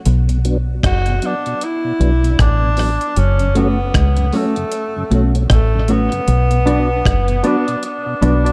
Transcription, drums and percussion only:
0.06 closed hi-hat loud
0.29 closed hi-hat medium
0.45 closed hi-hat medium
0.83 kick loud
0.83 cross-stick loud
0.83 closed hi-hat medium
1.06 closed hi-hat medium
1.22 closed hi-hat medium
1.46 closed hi-hat medium
1.61 closed hi-hat medium
2.01 closed hi-hat medium
2.24 closed hi-hat medium
2.39 kick loud
2.39 cross-stick loud
2.39 closed hi-hat medium
2.77 cross-stick medium
2.77 open hi-hat medium
3.01 closed hi-hat medium
3.16 closed hi-hat loud
3.39 closed hi-hat medium
3.55 closed hi-hat medium
3.94 kick loud
3.94 cross-stick loud
3.94 closed hi-hat medium
4.17 closed hi-hat medium
4.33 open hi-hat medium
4.56 closed hi-hat medium
4.72 closed hi-hat medium
5.11 closed hi-hat medium
5.35 closed hi-hat medium
5.50 kick loud
5.50 cross-stick loud
5.50 closed hi-hat loud
5.88 closed hi-hat medium
6.12 closed hi-hat medium
6.28 closed hi-hat loud
6.51 closed hi-hat medium
6.67 closed hi-hat medium
7.05 kick loud
7.05 cross-stick loud
7.05 closed hi-hat medium
7.28 closed hi-hat medium
7.44 closed hi-hat medium
7.68 closed hi-hat medium
7.83 closed hi-hat medium
8.22 closed hi-hat medium
8.46 closed hi-hat medium

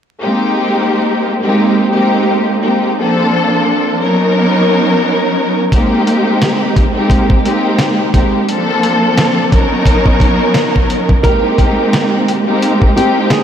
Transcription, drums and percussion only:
5.72 kick loud
5.72 closed hi-hat loud
6.07 closed hi-hat medium
6.42 snare loud
6.42 snare medium
6.42 closed hi-hat medium
6.76 kick loud
6.76 closed hi-hat medium
7.10 kick medium
7.10 closed hi-hat medium
7.30 kick medium
7.45 closed hi-hat medium
7.79 snare loud
7.79 snare medium
7.79 closed hi-hat medium
8.14 kick medium
8.14 closed hi-hat medium
8.49 closed hi-hat medium
8.83 closed hi-hat medium
9.17 snare loud
9.17 snare medium
9.17 closed hi-hat medium
9.52 kick medium
9.52 closed hi-hat medium
9.86 kick medium
9.86 closed hi-hat medium
10.06 kick medium
10.20 kick medium
10.20 closed hi-hat medium
10.54 snare loud
10.54 snare medium
10.54 closed hi-hat medium
10.76 kick medium
10.90 closed hi-hat medium
11.09 kick medium
11.24 kick loud
11.24 closed hi-hat loud
11.58 kick medium
11.58 closed hi-hat medium
11.93 snare loud
11.93 snare medium
11.93 closed hi-hat medium
12.28 closed hi-hat medium
12.62 closed hi-hat medium
12.82 kick medium
12.97 closed hi-hat medium
13.30 snare loud
13.30 snare medium
13.30 closed hi-hat medium

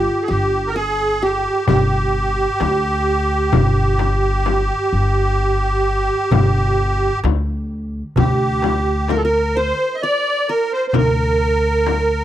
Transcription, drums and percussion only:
0.28 darbuka ka soft
1.67 darbuka dum medium
1.67 frame drum medium
2.14 darbuka ka soft
2.60 darbuka tek medium
2.60 frame drum medium
3.53 darbuka dum medium
3.53 frame drum medium
3.76 darbuka ka soft
3.99 darbuka tek medium
3.99 frame drum medium
4.46 darbuka tek medium
4.46 frame drum medium
6.31 darbuka dum medium
6.31 frame drum medium
6.77 darbuka ka soft
7.24 darbuka tek medium
7.24 frame drum medium
8.16 darbuka dum medium
8.16 frame drum medium
8.39 darbuka ka soft
8.62 darbuka tek medium
8.62 frame drum medium
9.08 darbuka tek medium
9.08 frame drum medium
10.93 darbuka dum medium
10.93 frame drum medium
11.86 darbuka tek medium
11.86 frame drum medium

